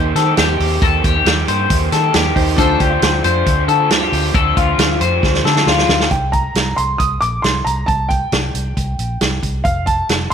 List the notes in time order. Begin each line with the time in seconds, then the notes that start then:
Already playing: D#2 D#3 A#3 C4 D#4 G4 C5
0.15 D#3 A4, snare, closed hi-hat
0.26 A#3 C4 G4
0.37 D#2 G4, snare, closed hi-hat
0.49 D#3 A#3 C4 G4
0.60 D#2, open hi-hat
0.82 D#2 D#3 A#3 C4 G4 A4, kick, closed hi-hat
1.04 D#2 G4, kick, closed hi-hat
1.15 D#3 A#3 C4 G4
1.25 D#2, snare, closed hi-hat
1.48 G2 D#3 A#3 C4 G4 C5, closed hi-hat
1.70 D#2, kick, closed hi-hat
1.92 D#3 A4, snare, closed hi-hat
2.03 A#3 C4 G4
2.14 D#2 G4, snare, closed hi-hat
2.25 D#3 A#3 C4 G4
2.35 D#2 D#4 G4 C5, kick, open hi-hat
2.56 D2 F3 A3 C4 D4 F4 A4 C5, kick, closed hi-hat
2.80 D2 G4, kick, closed hi-hat
2.91 D3 F3 A3 C4 F4
3.02 D2, snare, closed hi-hat
3.24 F2 F3 A3 C4 F4 C5, closed hi-hat
3.46 D2, kick, closed hi-hat
3.68 D3 A4, closed hi-hat
3.79 A3 C4 F4
3.90 D2 G4, snare, closed hi-hat
4.01 D3 F3 A3 C4 F4
4.12 D2, open hi-hat
4.34 D2 F3 A3 C4 F4 A4, kick, closed hi-hat
4.57 D2 F4, kick, closed hi-hat
4.68 D3 F3 A3 C4 F4
4.78 D2, snare, closed hi-hat
5.00 F2 F3 A3 C4 F4 C5, closed hi-hat
5.23 D2, kick, snare
5.34 snare
5.45 D3 A4, snare
5.55 A3 C4 F4, snare
5.66 D2 F4, snare
5.78 D3 F3 A3 C4 F4, snare
5.88 D2, snare
6.00 snare
6.11 C2 G5, kick, closed hi-hat
6.32 A#5, kick, closed hi-hat
6.55 C2, snare, closed hi-hat
6.76 C2 C6, closed hi-hat
6.98 C2 D#6, kick, closed hi-hat
7.21 A#1 D6, closed hi-hat
7.42 C2 C6, snare, closed hi-hat
7.64 C2 A#5, closed hi-hat
7.86 C2 A5, kick, closed hi-hat
8.09 G5, kick, closed hi-hat
8.32 C2, snare, closed hi-hat
8.54 C2, closed hi-hat
8.77 C2, kick, closed hi-hat
8.99 A#1, closed hi-hat
9.21 C2, snare, closed hi-hat
9.42 C2, kick, closed hi-hat
9.64 F1 F5, kick, closed hi-hat
9.86 A5, kick, closed hi-hat
10.09 F1, snare, closed hi-hat
10.30 C6